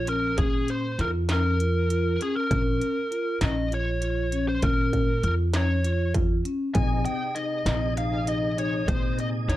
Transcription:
Already playing: A#1
0.07 C#4 A#4, closed hi-hat
0.38 A#2 C#4 G#4, kick, closed hi-hat
0.68 C5, closed hi-hat
0.99 F2 F4 A#4, snare, closed hi-hat
1.29 C#4 A#4, snare, closed hi-hat
1.60 F4, closed hi-hat
1.90 F4, closed hi-hat
2.21 C#4 G#4, closed hi-hat
2.36 A#4
2.51 A#1 C#4, kick, closed hi-hat
2.81 closed hi-hat
3.11 F4, closed hi-hat
3.41 A#1 C#4, snare, closed hi-hat
3.45 D#5
3.71 F4 C#5, closed hi-hat
4.02 F4, closed hi-hat
4.32 C#4, closed hi-hat
4.49 C5
4.62 A#2 C#4 A#4, kick, closed hi-hat
4.93 kick, closed hi-hat
5.23 F2 F4 A#4, closed hi-hat
5.54 C#4 C#5, snare, closed hi-hat
5.84 F4, closed hi-hat
6.14 F4, kick, closed hi-hat
6.45 C#4, closed hi-hat
6.73 A#1 C3 C4 D#4 G#4 D#5 G#5, kick, closed hi-hat
7.05 G5, closed hi-hat
7.35 D#4 D#5, closed hi-hat
7.66 A#1 C4, snare, closed hi-hat
7.97 D#4 F5, closed hi-hat
8.27 D#4 D#5, closed hi-hat
8.58 D#4 C#5, closed hi-hat
8.88 A#2 C4 C5, kick, closed hi-hat
9.19 D#5, closed hi-hat
9.48 D#2 D#4 C#5, snare, closed hi-hat

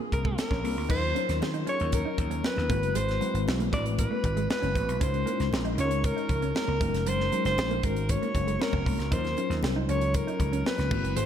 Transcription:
Already playing: A#3 C4 D4 F4 G#4
0.12 C2 A#4, muted clean electric guitar stroke, kick, closed hi-hat, muted conga
0.25 G#3, kick
0.38 A#4, muted clean electric guitar stroke, snare, closed hi-hat, high conga
0.51 A#1 C#4, kick, snare, high conga
0.63 C2 A#3 C4 D4 F4 G#4, open hi-hat
0.78 D2
0.89 D#2 F#3 C#4 D#4 F4 A#4 C5, kick, crash
1.02 muted clean electric guitar stroke
1.15 F#3 C#4 D#4 F4 A#4, closed hi-hat, muted conga
1.29 D#2, snare, closed hi-hat
1.41 D#3, muted clean electric guitar stroke, snare, high conga
1.54 D#4, closed hi-hat
1.67 F#3 C#4 D#4 F4 G#4 C#5, closed hi-hat
1.74 A#4
1.80 D#2, closed hi-hat
1.92 A#4, kick, closed hi-hat, muted conga
2.05 D#4
2.18 D#2, muted clean electric guitar stroke, kick, closed hi-hat, muted conga, low conga
2.31 C#4, closed hi-hat
2.44 B4, snare, high conga
2.56 D#2, snare, high conga
2.69 G#1 G#3 A#3 C4 E4 F#4 B4, kick, closed hi-hat
2.83 F#1, closed hi-hat
2.95 G#1 G#3 C5, closed hi-hat
3.08 muted clean electric guitar stroke, snare, closed hi-hat
3.21 F#3 G#3 C4 E4 F#4 B4, closed hi-hat, muted conga
3.34 G#1, closed hi-hat
3.47 B1, muted clean electric guitar stroke, snare, high conga
3.60 A#3, closed hi-hat
3.72 A1 G#3 C4 E4 F#4 B4 D5, kick, closed hi-hat, low conga
3.86 closed hi-hat
3.99 B4, kick, closed hi-hat, muted conga
4.11 A#3
4.24 G#1, muted clean electric guitar stroke, kick, closed hi-hat, muted conga
4.37 G#3, closed hi-hat
4.49 B4, muted clean electric guitar stroke, snare, high conga
4.62 F#1 C#4, closed hi-hat, high conga
4.75 A1 C4, kick, closed hi-hat
4.89 B1, closed hi-hat
5.01 C#2 G#3 C#4 D#4 F4 A#4 C5, kick, closed hi-hat
5.13 muted clean electric guitar stroke, closed hi-hat
5.26 G#3 A#3 C#4 D#4 E4 A#4, closed hi-hat, muted conga
5.33 F4
5.40 C#2, snare, closed hi-hat
5.52 A#1, muted clean electric guitar stroke, snare, high conga
5.65 D#4, closed hi-hat
5.77 C#2 G#3 C#4 D#4 F4 G#4 C#5, closed hi-hat
5.85 A#4
5.91 closed hi-hat
6.04 A#4, kick, closed hi-hat, muted conga
6.17 D#4, closed hi-hat
6.29 C#2, muted clean electric guitar stroke, kick, closed hi-hat, muted conga, low conga
6.42 C#4, closed hi-hat
6.55 A#4, snare, high conga
6.68 C#2, high conga
6.80 F#1 G#3 A#3 C#4 D#4 F#4 A#4, kick, closed hi-hat
6.94 F1, snare, closed hi-hat
7.06 F#1 F#3 C5, closed hi-hat
7.19 muted clean electric guitar stroke, snare
7.31 F#3 G#3 C#4 D#4 F#4 A#4, closed hi-hat, muted conga
7.45 F#1 C5, snare, closed hi-hat
7.58 A#1, muted clean electric guitar stroke, snare, high conga
7.71 A#3, closed hi-hat
7.83 G#1 G#3 C#4 D#4 F#4 A#4, kick, closed hi-hat
7.96 closed hi-hat
8.09 C#5, kick, closed hi-hat, muted conga
8.22 A#3, closed hi-hat
8.34 F#1, muted clean electric guitar stroke, kick, closed hi-hat, muted conga
8.47 G#3, closed hi-hat
8.59 A#4, muted clean electric guitar stroke, snare, high conga
8.72 F1 C#4, kick, high conga
8.86 C2 A#3, kick, open hi-hat
8.98 C#2, snare, closed hi-hat, high conga
9.11 D#2 F#3 C#4 D#4 F4 A#4 C5, kick, closed hi-hat
9.24 muted clean electric guitar stroke, snare, closed hi-hat
9.36 F#3 C#4 D#4 F4 A#4, closed hi-hat, muted conga
9.50 D#2, snare, closed hi-hat
9.63 C2, muted clean electric guitar stroke, snare, high conga
9.76 D#4
9.88 C#2 F#3 C#4 D#4 F4 A4 C#5, closed hi-hat
9.95 A#4
10.01 closed hi-hat
10.14 A#4, kick, closed hi-hat, muted conga
10.27 D#4, closed hi-hat
10.40 C#2, muted clean electric guitar stroke, kick, closed hi-hat, muted conga, low conga
10.53 C#4, closed hi-hat
10.65 B4, snare, high conga
10.78 C#2, snare, closed hi-hat, high conga
10.91 G#1 G#3 A#3 C4 E4 F#4 B4, kick, crash
11.03 F#1, closed hi-hat
11.16 G#1 G#3 C5, closed hi-hat

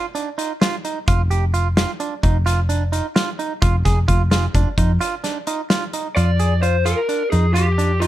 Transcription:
0.15 D4, closed hi-hat
0.38 D#4, closed hi-hat
0.61 F4, snare, closed hi-hat
0.85 D#4, closed hi-hat
1.08 F1 F4, kick, closed hi-hat
1.31 G4, closed hi-hat
1.54 F4, closed hi-hat
1.77 F4, snare, closed hi-hat
2.00 D4, closed hi-hat
2.23 F1 D#4, kick, closed hi-hat
2.46 F4, closed hi-hat
2.69 D4, closed hi-hat
2.92 D#4, closed hi-hat
3.16 F4, snare, closed hi-hat
3.39 D#4, closed hi-hat
3.62 F1 F4, kick, closed hi-hat
3.85 F1 G#4, kick, snare, closed hi-hat
4.08 F1 F4, kick, closed hi-hat
4.31 F4, snare, closed hi-hat
4.55 F1 D4, kick, closed hi-hat
4.78 F2 D#4, kick, closed hi-hat
5.01 F4, closed hi-hat
5.24 D4, snare, closed hi-hat
5.47 D#4, closed hi-hat
5.70 F4, snare, closed hi-hat
5.93 D#4, closed hi-hat
6.16 F2 F4 D5, closed hi-hat
6.39 G#4, closed hi-hat
6.62 F4 C5, closed hi-hat
6.85 F4 A#4, closed hi-hat
7.09 D4, closed hi-hat
7.30 F2 D#4 G#4, closed hi-hat
7.54 F4 G4, closed hi-hat
7.78 D4, closed hi-hat
8.00 D#4 F4, closed hi-hat

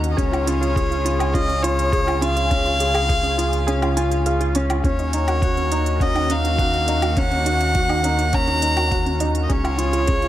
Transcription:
Already playing: D#2 D#3 A#3 C#4 D#4 F#4
0.04 closed hi-hat
0.11 D#5
0.17 C#2 C#3 C#4 F4 G#4 C#5, kick, closed hi-hat
0.32 F4, closed hi-hat, low woodblock
0.46 C#4 F4, closed hi-hat
0.61 F4, closed hi-hat
0.76 C#4 G#4, kick, closed hi-hat
0.91 F4, closed hi-hat
1.05 F4, closed hi-hat
1.19 G#4, closed hi-hat, low woodblock
1.34 C#4 F4 D#5, kick, closed hi-hat
1.48 C#4, closed hi-hat
1.63 F4 C#5, closed hi-hat
1.79 closed hi-hat
1.92 G#4, kick, closed hi-hat
2.07 F4, closed hi-hat, low woodblock
2.21 C#4 F4 F5, closed hi-hat
2.36 F4, closed hi-hat
2.50 C#4, kick, closed hi-hat
2.65 F4, closed hi-hat
2.80 G#4, closed hi-hat
2.94 G#4, closed hi-hat, low woodblock
3.09 F4 G#4, kick, closed hi-hat
3.23 C#4, closed hi-hat
3.37 F4, closed hi-hat
3.53 closed hi-hat
3.67 C#4 G#4, closed hi-hat
3.82 F4, closed hi-hat, low woodblock
3.97 F4 G#5, closed hi-hat
4.12 closed hi-hat
4.26 G#4 F5, closed hi-hat
4.41 F4, closed hi-hat
4.55 C#4, closed hi-hat
4.70 F4, closed hi-hat, low woodblock
4.84 D#2 D#3 A#3 C#4 F#4 C#5, kick, closed hi-hat
4.99 D#4, closed hi-hat
5.13 D#4, closed hi-hat
5.28 F#4, closed hi-hat, low woodblock
5.42 C#4 F#4, kick, closed hi-hat
5.57 C#4, closed hi-hat
5.72 D#4, closed hi-hat
5.86 closed hi-hat
6.00 C#4 F#4 D#5, kick, closed hi-hat
6.15 D#4, closed hi-hat, low woodblock
6.30 C#4 D#4 F5, closed hi-hat
6.44 D#4, closed hi-hat
6.58 C#4 F#4, kick, closed hi-hat
6.74 D#4, closed hi-hat
6.88 D#4, closed hi-hat
7.02 F#4, closed hi-hat, low woodblock
7.17 C#4 F#5, kick, closed hi-hat
7.31 C#4, closed hi-hat
7.45 D#4 F#4, closed hi-hat
7.61 closed hi-hat
7.75 F#4, kick, closed hi-hat
7.89 D#4, closed hi-hat, low woodblock
8.04 C#4 D#4, closed hi-hat
8.18 D#4, closed hi-hat
8.33 C#4 A#5, kick, closed hi-hat
8.47 D#4, closed hi-hat
8.62 D#4, closed hi-hat
8.77 F#4, closed hi-hat, low woodblock
8.91 C#4 F#4, kick, closed hi-hat
9.06 C#4, closed hi-hat
9.20 D#4, closed hi-hat
9.35 closed hi-hat
9.43 D#5
9.49 C#2 C#3 C#4 F4 G#4 C#5, kick, closed hi-hat
9.64 F4, closed hi-hat, low woodblock
9.78 C#4 F4, closed hi-hat
9.93 F4, closed hi-hat
10.07 C#4 G#4, kick, closed hi-hat
10.22 F4, closed hi-hat

